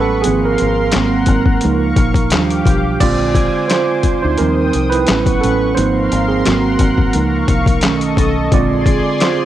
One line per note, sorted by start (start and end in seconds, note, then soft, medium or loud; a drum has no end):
0.00 0.22 A1 medium
0.00 0.22 F#3 medium
0.00 0.22 B3 soft
0.00 0.22 C#4 medium
0.00 0.26 A4 medium
0.00 0.23 B4 medium
0.00 0.26 B4 medium
0.00 0.23 F#5 medium
0.00 0.23 C#6 medium
0.22 0.89 F3 medium
0.22 0.90 A#3 medium
0.22 0.90 C4 medium
0.22 0.47 G#4 loud
0.22 2.29 A#4 medium
0.22 0.92 F5 medium
0.22 1.61 C6 medium
0.22 closed hi-hat medium
0.27 0.57 G#1 loud
0.45 2.15 A#4 medium
0.58 0.91 G#1 medium
0.58 closed hi-hat medium
0.92 1.59 F#3 medium
0.92 1.59 A#3 medium
0.92 1.59 C4 medium
0.92 1.61 F#5 medium
0.92 snare medium
0.92 clap medium
0.92 closed hi-hat medium
0.96 1.25 G#1 loud
1.26 1.59 G#1 medium
1.26 kick medium
1.26 closed hi-hat medium
1.46 kick medium
1.61 1.94 C#2 loud
1.61 2.09 F3 medium
1.61 2.10 A#3 medium
1.61 2.10 D#4 medium
1.61 2.29 F5 medium
1.61 2.31 C#6 medium
1.61 closed hi-hat medium
1.96 2.34 A#1 medium
1.96 kick loud
1.96 closed hi-hat medium
2.15 kick medium
2.15 closed hi-hat medium
2.30 2.64 D#2 loud
2.30 2.79 F3 medium
2.30 2.79 G3 soft
2.30 2.99 G4 medium
2.30 2.99 F5 medium
2.30 2.98 D6 medium
2.30 snare loud
2.30 clap loud
2.30 closed hi-hat medium
2.34 2.80 D4 medium
2.51 closed hi-hat soft
2.66 2.97 B1 medium
2.66 kick loud
2.66 closed hi-hat medium
2.99 3.48 A#1 loud
2.99 3.47 D3 medium
2.99 3.48 G#3 medium
2.99 3.48 C4 medium
2.99 3.66 F4 medium
2.99 5.05 C5 medium
2.99 3.71 D5 loud
2.99 4.36 G#5 medium
2.99 4.36 D6 medium
2.99 kick loud
2.99 closed hi-hat medium
2.99 crash medium
3.35 kick medium
3.35 closed hi-hat medium
3.68 4.19 F4 medium
3.68 4.21 C5 medium
3.68 snare medium
3.68 clap medium
3.68 closed hi-hat medium
4.03 muted fingered electric bass stroke soft
4.03 kick medium
4.03 closed hi-hat medium
4.22 4.38 D2 medium
4.22 4.38 D#4 medium
4.22 4.39 C5 medium
4.38 4.70 D#2 loud
4.38 5.04 F3 medium
4.38 5.04 G3 soft
4.38 5.05 C4 medium
4.38 4.88 D#4 medium
4.38 4.92 A#4 medium
4.38 5.06 G5 medium
4.38 5.06 D#6 medium
4.38 closed hi-hat medium
4.73 5.05 C2 medium
4.73 closed hi-hat medium
4.90 5.38 E4 medium
4.90 5.42 B4 medium
4.90 closed hi-hat soft
5.06 5.39 A1 medium
5.06 5.72 F#3 medium
5.06 5.73 B3 soft
5.06 5.42 C#4 medium
5.06 5.75 B4 medium
5.06 5.75 F#5 medium
5.06 5.75 C#6 medium
5.06 snare loud
5.06 clap medium
5.06 closed hi-hat medium
5.26 kick medium
5.26 closed hi-hat medium
5.41 5.74 A1 medium
5.41 5.74 C#4 medium
5.41 5.77 A4 medium
5.41 closed hi-hat medium
5.75 6.08 G#1 medium
5.75 6.41 F3 medium
5.75 6.42 A#3 medium
5.75 6.29 C4 medium
5.75 6.26 D#4 medium
5.75 7.80 A#4 medium
5.75 6.25 C5 loud
5.75 6.44 F5 medium
5.75 7.12 C6 medium
5.75 closed hi-hat medium
6.12 6.42 G#1 medium
6.12 closed hi-hat medium
6.28 6.44 C4 medium
6.28 6.45 G#4 medium
6.44 6.77 G#1 medium
6.44 7.11 F#3 medium
6.44 7.11 A#3 medium
6.44 7.11 C4 medium
6.44 7.10 F#4 medium
6.44 7.13 F#5 medium
6.44 snare medium
6.44 clap medium
6.44 closed hi-hat medium
6.79 7.11 G#1 medium
6.79 kick medium
6.79 closed hi-hat medium
6.98 kick medium
7.13 7.46 C#2 medium
7.13 7.60 F3 medium
7.13 7.61 A#3 soft
7.13 7.61 D#4 medium
7.13 7.82 F5 medium
7.13 8.50 C#6 medium
7.13 closed hi-hat medium
7.48 7.85 C2 medium
7.48 kick medium
7.48 closed hi-hat medium
7.66 kick medium
7.66 closed hi-hat medium
7.81 8.15 B1 loud
7.81 8.30 D#3 medium
7.81 8.30 A3 soft
7.81 8.30 C#4 medium
7.81 8.51 A4 medium
7.81 8.51 D#5 medium
7.81 snare loud
7.81 clap loud
7.81 closed hi-hat medium
8.01 closed hi-hat medium
8.17 8.49 B1 medium
8.17 kick loud
8.17 closed hi-hat medium
8.52 9.00 A#1 loud
8.52 9.45 D3 medium
8.52 9.45 G#3 medium
8.52 9.45 C4 medium
8.52 9.18 F4 medium
8.52 9.45 G#4 medium
8.52 9.45 D5 medium
8.52 9.24 D5 medium
8.52 9.45 C6 medium
8.52 kick loud
8.52 closed hi-hat medium
8.86 kick loud
8.86 closed hi-hat medium
9.20 9.45 F4 medium
9.20 9.45 C5 medium
9.20 snare medium
9.20 clap medium
9.20 closed hi-hat medium